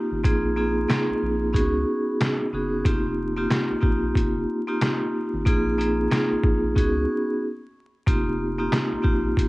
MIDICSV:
0, 0, Header, 1, 4, 480
1, 0, Start_track
1, 0, Key_signature, -4, "minor"
1, 0, Tempo, 652174
1, 180, Time_signature, 4, 2, 24, 8
1, 6980, End_track
2, 0, Start_track
2, 0, Title_t, "Vibraphone"
2, 0, Program_c, 0, 11
2, 0, Note_on_c, 0, 58, 97
2, 0, Note_on_c, 0, 60, 78
2, 0, Note_on_c, 0, 63, 91
2, 0, Note_on_c, 0, 65, 88
2, 0, Note_on_c, 0, 67, 112
2, 140, Note_off_c, 0, 58, 0
2, 141, Note_off_c, 0, 60, 0
2, 142, Note_off_c, 0, 63, 0
2, 144, Note_off_c, 0, 65, 0
2, 145, Note_off_c, 0, 67, 0
2, 172, Note_on_c, 0, 58, 97
2, 175, Note_on_c, 0, 60, 75
2, 178, Note_on_c, 0, 63, 88
2, 181, Note_on_c, 0, 65, 87
2, 183, Note_on_c, 0, 68, 104
2, 401, Note_off_c, 0, 58, 0
2, 402, Note_off_c, 0, 60, 0
2, 404, Note_off_c, 0, 63, 0
2, 405, Note_off_c, 0, 65, 0
2, 406, Note_off_c, 0, 68, 0
2, 414, Note_on_c, 0, 58, 104
2, 417, Note_on_c, 0, 60, 90
2, 419, Note_on_c, 0, 63, 84
2, 422, Note_on_c, 0, 65, 85
2, 425, Note_on_c, 0, 68, 100
2, 642, Note_off_c, 0, 58, 0
2, 643, Note_off_c, 0, 60, 0
2, 644, Note_off_c, 0, 63, 0
2, 646, Note_off_c, 0, 65, 0
2, 647, Note_off_c, 0, 68, 0
2, 650, Note_on_c, 0, 58, 98
2, 653, Note_on_c, 0, 60, 83
2, 655, Note_on_c, 0, 63, 91
2, 658, Note_on_c, 0, 65, 85
2, 661, Note_on_c, 0, 68, 101
2, 1105, Note_off_c, 0, 58, 0
2, 1106, Note_off_c, 0, 60, 0
2, 1107, Note_off_c, 0, 63, 0
2, 1109, Note_off_c, 0, 65, 0
2, 1110, Note_off_c, 0, 68, 0
2, 1128, Note_on_c, 0, 59, 84
2, 1131, Note_on_c, 0, 61, 84
2, 1133, Note_on_c, 0, 63, 84
2, 1137, Note_on_c, 0, 66, 81
2, 1139, Note_on_c, 0, 68, 105
2, 1808, Note_off_c, 0, 59, 0
2, 1809, Note_off_c, 0, 61, 0
2, 1810, Note_off_c, 0, 63, 0
2, 1812, Note_off_c, 0, 66, 0
2, 1813, Note_off_c, 0, 68, 0
2, 1863, Note_on_c, 0, 59, 75
2, 1866, Note_on_c, 0, 61, 71
2, 1869, Note_on_c, 0, 63, 73
2, 1871, Note_on_c, 0, 66, 71
2, 1873, Note_on_c, 0, 68, 95
2, 2086, Note_off_c, 0, 59, 0
2, 2088, Note_off_c, 0, 61, 0
2, 2089, Note_off_c, 0, 63, 0
2, 2090, Note_off_c, 0, 66, 0
2, 2092, Note_off_c, 0, 68, 0
2, 2096, Note_on_c, 0, 58, 88
2, 2099, Note_on_c, 0, 60, 91
2, 2102, Note_on_c, 0, 63, 91
2, 2104, Note_on_c, 0, 65, 88
2, 2107, Note_on_c, 0, 67, 100
2, 2447, Note_off_c, 0, 58, 0
2, 2449, Note_off_c, 0, 60, 0
2, 2450, Note_off_c, 0, 63, 0
2, 2451, Note_off_c, 0, 65, 0
2, 2453, Note_off_c, 0, 67, 0
2, 2478, Note_on_c, 0, 58, 96
2, 2480, Note_on_c, 0, 60, 84
2, 2483, Note_on_c, 0, 63, 82
2, 2486, Note_on_c, 0, 65, 88
2, 2488, Note_on_c, 0, 67, 104
2, 2794, Note_off_c, 0, 58, 0
2, 2795, Note_off_c, 0, 60, 0
2, 2797, Note_off_c, 0, 63, 0
2, 2798, Note_off_c, 0, 65, 0
2, 2799, Note_off_c, 0, 67, 0
2, 2802, Note_on_c, 0, 58, 93
2, 2804, Note_on_c, 0, 60, 77
2, 2807, Note_on_c, 0, 63, 84
2, 2810, Note_on_c, 0, 65, 92
2, 2813, Note_on_c, 0, 67, 96
2, 3377, Note_off_c, 0, 58, 0
2, 3379, Note_off_c, 0, 60, 0
2, 3380, Note_off_c, 0, 63, 0
2, 3381, Note_off_c, 0, 65, 0
2, 3383, Note_off_c, 0, 67, 0
2, 3440, Note_on_c, 0, 58, 95
2, 3442, Note_on_c, 0, 60, 77
2, 3446, Note_on_c, 0, 63, 88
2, 3448, Note_on_c, 0, 65, 91
2, 3451, Note_on_c, 0, 67, 106
2, 3980, Note_off_c, 0, 58, 0
2, 3981, Note_off_c, 0, 60, 0
2, 3983, Note_off_c, 0, 63, 0
2, 3984, Note_off_c, 0, 65, 0
2, 3985, Note_off_c, 0, 67, 0
2, 4013, Note_on_c, 0, 58, 97
2, 4015, Note_on_c, 0, 60, 74
2, 4018, Note_on_c, 0, 63, 91
2, 4021, Note_on_c, 0, 65, 87
2, 4024, Note_on_c, 0, 68, 104
2, 4241, Note_off_c, 0, 58, 0
2, 4243, Note_off_c, 0, 60, 0
2, 4244, Note_off_c, 0, 63, 0
2, 4245, Note_off_c, 0, 65, 0
2, 4247, Note_off_c, 0, 68, 0
2, 4253, Note_on_c, 0, 58, 101
2, 4256, Note_on_c, 0, 60, 91
2, 4259, Note_on_c, 0, 63, 85
2, 4262, Note_on_c, 0, 65, 86
2, 4264, Note_on_c, 0, 68, 101
2, 4482, Note_off_c, 0, 58, 0
2, 4483, Note_off_c, 0, 60, 0
2, 4484, Note_off_c, 0, 63, 0
2, 4486, Note_off_c, 0, 65, 0
2, 4487, Note_off_c, 0, 68, 0
2, 4492, Note_on_c, 0, 58, 97
2, 4495, Note_on_c, 0, 60, 84
2, 4498, Note_on_c, 0, 63, 93
2, 4500, Note_on_c, 0, 65, 84
2, 4503, Note_on_c, 0, 68, 100
2, 4946, Note_off_c, 0, 58, 0
2, 4947, Note_off_c, 0, 60, 0
2, 4948, Note_off_c, 0, 63, 0
2, 4950, Note_off_c, 0, 65, 0
2, 4951, Note_off_c, 0, 68, 0
2, 4969, Note_on_c, 0, 59, 83
2, 4972, Note_on_c, 0, 61, 87
2, 4975, Note_on_c, 0, 63, 85
2, 4978, Note_on_c, 0, 66, 82
2, 4980, Note_on_c, 0, 68, 110
2, 5455, Note_off_c, 0, 59, 0
2, 5456, Note_off_c, 0, 61, 0
2, 5458, Note_off_c, 0, 63, 0
2, 5459, Note_off_c, 0, 66, 0
2, 5460, Note_off_c, 0, 68, 0
2, 5935, Note_on_c, 0, 58, 85
2, 5938, Note_on_c, 0, 60, 87
2, 5941, Note_on_c, 0, 63, 89
2, 5944, Note_on_c, 0, 65, 88
2, 5946, Note_on_c, 0, 67, 99
2, 6287, Note_off_c, 0, 58, 0
2, 6288, Note_off_c, 0, 60, 0
2, 6290, Note_off_c, 0, 63, 0
2, 6291, Note_off_c, 0, 65, 0
2, 6293, Note_off_c, 0, 67, 0
2, 6317, Note_on_c, 0, 58, 95
2, 6320, Note_on_c, 0, 60, 84
2, 6323, Note_on_c, 0, 63, 84
2, 6326, Note_on_c, 0, 65, 85
2, 6328, Note_on_c, 0, 67, 100
2, 6632, Note_off_c, 0, 58, 0
2, 6635, Note_off_c, 0, 60, 0
2, 6637, Note_off_c, 0, 63, 0
2, 6638, Note_off_c, 0, 65, 0
2, 6639, Note_off_c, 0, 67, 0
2, 6641, Note_on_c, 0, 58, 90
2, 6644, Note_on_c, 0, 60, 76
2, 6646, Note_on_c, 0, 63, 83
2, 6649, Note_on_c, 0, 65, 90
2, 6652, Note_on_c, 0, 67, 97
2, 6980, Note_off_c, 0, 58, 0
2, 6980, Note_off_c, 0, 60, 0
2, 6980, Note_off_c, 0, 63, 0
2, 6980, Note_off_c, 0, 65, 0
2, 6980, Note_off_c, 0, 67, 0
2, 6980, End_track
3, 0, Start_track
3, 0, Title_t, "Analog synth bass"
3, 0, Program_c, 1, 38
3, 86, Note_on_c, 1, 32, 86
3, 173, Note_off_c, 1, 32, 0
3, 180, Note_on_c, 1, 34, 109
3, 631, Note_off_c, 1, 34, 0
3, 806, Note_on_c, 1, 34, 49
3, 844, Note_off_c, 1, 34, 0
3, 902, Note_on_c, 1, 34, 92
3, 1138, Note_on_c, 1, 37, 99
3, 1149, Note_off_c, 1, 34, 0
3, 1357, Note_off_c, 1, 37, 0
3, 1862, Note_on_c, 1, 30, 90
3, 2079, Note_off_c, 1, 30, 0
3, 2100, Note_on_c, 1, 29, 106
3, 2551, Note_off_c, 1, 29, 0
3, 2727, Note_on_c, 1, 34, 48
3, 2765, Note_off_c, 1, 34, 0
3, 2818, Note_on_c, 1, 34, 99
3, 3037, Note_off_c, 1, 34, 0
3, 3058, Note_on_c, 1, 29, 101
3, 3277, Note_off_c, 1, 29, 0
3, 3927, Note_on_c, 1, 32, 89
3, 4013, Note_off_c, 1, 32, 0
3, 4020, Note_on_c, 1, 34, 110
3, 4471, Note_off_c, 1, 34, 0
3, 4646, Note_on_c, 1, 34, 49
3, 4684, Note_off_c, 1, 34, 0
3, 4737, Note_on_c, 1, 34, 92
3, 4978, Note_on_c, 1, 37, 102
3, 4989, Note_off_c, 1, 34, 0
3, 5197, Note_off_c, 1, 37, 0
3, 5940, Note_on_c, 1, 29, 104
3, 6391, Note_off_c, 1, 29, 0
3, 6566, Note_on_c, 1, 34, 48
3, 6604, Note_off_c, 1, 34, 0
3, 6657, Note_on_c, 1, 34, 99
3, 6877, Note_off_c, 1, 34, 0
3, 6897, Note_on_c, 1, 29, 101
3, 6980, Note_off_c, 1, 29, 0
3, 6980, End_track
4, 0, Start_track
4, 0, Title_t, "Drums"
4, 179, Note_on_c, 9, 36, 116
4, 184, Note_on_c, 9, 42, 89
4, 253, Note_off_c, 9, 36, 0
4, 258, Note_off_c, 9, 42, 0
4, 660, Note_on_c, 9, 40, 91
4, 665, Note_on_c, 9, 38, 113
4, 670, Note_on_c, 9, 42, 72
4, 733, Note_off_c, 9, 40, 0
4, 739, Note_off_c, 9, 38, 0
4, 744, Note_off_c, 9, 42, 0
4, 1137, Note_on_c, 9, 36, 88
4, 1149, Note_on_c, 9, 42, 85
4, 1210, Note_off_c, 9, 36, 0
4, 1223, Note_off_c, 9, 42, 0
4, 1623, Note_on_c, 9, 42, 83
4, 1624, Note_on_c, 9, 40, 90
4, 1630, Note_on_c, 9, 38, 114
4, 1697, Note_off_c, 9, 42, 0
4, 1698, Note_off_c, 9, 40, 0
4, 1703, Note_off_c, 9, 38, 0
4, 2099, Note_on_c, 9, 36, 119
4, 2104, Note_on_c, 9, 42, 90
4, 2173, Note_off_c, 9, 36, 0
4, 2178, Note_off_c, 9, 42, 0
4, 2579, Note_on_c, 9, 40, 91
4, 2585, Note_on_c, 9, 38, 115
4, 2590, Note_on_c, 9, 42, 70
4, 2653, Note_off_c, 9, 40, 0
4, 2659, Note_off_c, 9, 38, 0
4, 2663, Note_off_c, 9, 42, 0
4, 2816, Note_on_c, 9, 36, 104
4, 2890, Note_off_c, 9, 36, 0
4, 3057, Note_on_c, 9, 36, 91
4, 3069, Note_on_c, 9, 42, 83
4, 3130, Note_off_c, 9, 36, 0
4, 3143, Note_off_c, 9, 42, 0
4, 3543, Note_on_c, 9, 42, 83
4, 3544, Note_on_c, 9, 40, 93
4, 3550, Note_on_c, 9, 38, 116
4, 3617, Note_off_c, 9, 42, 0
4, 3618, Note_off_c, 9, 40, 0
4, 3623, Note_off_c, 9, 38, 0
4, 4019, Note_on_c, 9, 36, 118
4, 4025, Note_on_c, 9, 42, 89
4, 4093, Note_off_c, 9, 36, 0
4, 4098, Note_off_c, 9, 42, 0
4, 4274, Note_on_c, 9, 42, 53
4, 4348, Note_off_c, 9, 42, 0
4, 4499, Note_on_c, 9, 40, 91
4, 4505, Note_on_c, 9, 38, 117
4, 4510, Note_on_c, 9, 42, 71
4, 4573, Note_off_c, 9, 40, 0
4, 4579, Note_off_c, 9, 38, 0
4, 4583, Note_off_c, 9, 42, 0
4, 4736, Note_on_c, 9, 36, 103
4, 4810, Note_off_c, 9, 36, 0
4, 4976, Note_on_c, 9, 36, 89
4, 4989, Note_on_c, 9, 42, 86
4, 5050, Note_off_c, 9, 36, 0
4, 5063, Note_off_c, 9, 42, 0
4, 5939, Note_on_c, 9, 36, 121
4, 5945, Note_on_c, 9, 42, 89
4, 6013, Note_off_c, 9, 36, 0
4, 6018, Note_off_c, 9, 42, 0
4, 6419, Note_on_c, 9, 40, 92
4, 6425, Note_on_c, 9, 38, 113
4, 6430, Note_on_c, 9, 42, 71
4, 6493, Note_off_c, 9, 40, 0
4, 6499, Note_off_c, 9, 38, 0
4, 6504, Note_off_c, 9, 42, 0
4, 6656, Note_on_c, 9, 36, 97
4, 6730, Note_off_c, 9, 36, 0
4, 6896, Note_on_c, 9, 36, 86
4, 6909, Note_on_c, 9, 42, 86
4, 6970, Note_off_c, 9, 36, 0
4, 6980, Note_off_c, 9, 42, 0
4, 6980, End_track
0, 0, End_of_file